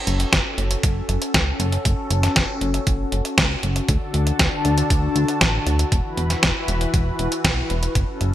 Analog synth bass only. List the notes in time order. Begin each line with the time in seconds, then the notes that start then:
0.07 F#1
0.33 F#1
0.58 F#1
0.84 F#1
1.09 F#1
1.34 C#2
1.60 F#1
1.85 F#1
2.10 F#1
2.36 F#1
2.61 F#1
2.87 F#1
3.12 F#1
3.38 C#2
3.63 F#1
3.89 D2
4.14 D2
4.39 D2
4.65 D2
4.90 D2
5.16 D2
5.41 A1
5.66 D2
5.92 E1
6.17 E1
6.43 E1
6.68 E1
6.94 E1
7.19 E1
7.44 B1
7.70 E1
7.95 F#1
8.21 F#1